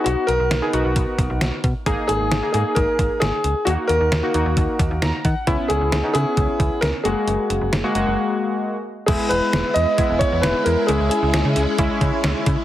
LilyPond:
<<
  \new Staff \with { instrumentName = "Grand piano" } { \time 4/4 \key e \lydian \tempo 4 = 133 fis'8 ais'2. r8 | r8 gis'4 gis'8 ais'4 gis'4 | fis'8 ais'2. r8 | r8 gis'4 gis'4. ais'8 gis'8~ |
gis'4. r2 r8 | gis'8 b'4 dis''4 cis''8 b'8 ais'8 | gis'8 gis'4. r2 | }
  \new Staff \with { instrumentName = "Synth keys" } { \time 4/4 \key e \lydian << { r1 | r1 | r2. ais''8 fis''8 | r1 |
r1 | r1 | r1 | } \\ { <b dis' fis'>4 r16 <b dis' gis'>16 <b dis' fis'>4.~ <b dis' fis'>16 r8. | <ais dis' gis'>4 r16 <ais dis' gis'>16 <ais dis' gis'>4.~ <ais dis' gis'>16 r8. | <ais dis' fis'>4 r16 <ais dis' fis'>16 <ais dis' fis'>4.~ <ais dis' fis'>16 r8. | <b cis' e'>4 r16 <b cis' dis'>16 <b cis' e'>4.~ <b cis' e'>16 r16 <gis ais fis'>8~ |
<gis ais fis'>4 r16 <gis ais fis'>16 <gis ais fis'>4.~ <gis ais fis'>16 r8. | <gis b e'>4.~ <gis b e'>16 r16 <gis b e'>4.~ <gis b e'>16 r16 | <gis cis' e'>4.~ <gis cis' e'>16 r16 <gis cis' e'>4.~ <gis cis' e'>16 r16 | } >> }
  \new Staff \with { instrumentName = "String machine" } { \time 4/4 \key e \lydian << { r1 | r1 | r1 | r1 |
r1 | <gis e'>1~ | <gis e'>1 | } \\ { r1 | r1 | r1 | r1 |
r1 | b1 | cis'1 | } >> }
  \new Staff \with { instrumentName = "FM bass" } { \clef bass \time 4/4 \key e \lydian b,,16 r16 b,,16 b,,16 b,,16 r16 b,,16 b,,16 b,,16 r16 b,,16 b,,16 b,,16 r16 b,16 r16 | gis,,16 r16 gis,,16 gis,,16 gis,,16 r16 gis,16 r16 gis,,16 r16 gis,,16 r16 gis,,16 r16 cis,16 r16 | dis,16 r16 dis,16 dis,16 dis,16 r16 dis,16 dis,16 dis,16 r16 dis,16 dis,16 dis,16 r16 dis16 r16 | cis,16 r16 cis,16 cis,16 cis,16 r16 cis16 r16 cis,16 r16 cis,16 r16 cis,16 r16 fis,,16 r16 |
fis,,16 r16 fis,,16 fis,,16 fis,,16 r16 fis,,16 fis,,16 r2 | e,,16 r16 e,,16 r16 e,,16 r16 e,16 r8 e,,16 r16 e,16 e,,16 r16 e,16 r16 | cis,16 cis,16 r16 cis,16 cis,16 cis16 cis,16 r16 cis,16 r16 cis16 r16 cis,16 r16 cis16 r16 | }
  \new DrumStaff \with { instrumentName = "Drums" } \drummode { \time 4/4 hh8 hh8 <hh sn>8 hh8 <hh bd>8 <hh bd>8 <hh sn>8 <hh bd>8 | <hh bd>8 hh8 <hh sn>8 hh8 <hh bd>8 <hh bd>8 <hh sn>8 hh8 | hh8 hh8 <hh sn>8 hh8 <hh bd>8 <hh bd>8 <hh sn>8 <hh bd>8 | <hh bd>8 hh8 <hh sn>8 hh8 <hh bd>8 <hh bd>8 <hh sn>8 hh8 |
hh8 hh8 <hh sn>8 hh8 r4 r4 | <cymc hh bd>8 hh8 <hh sn>8 hh8 <hh bd>8 <hh bd>8 <hh sn>8 hh8 | hh8 hh8 <hh sn>8 hh8 <hh bd>8 <hh bd>8 <hh sn>8 <hh bd>8 | }
>>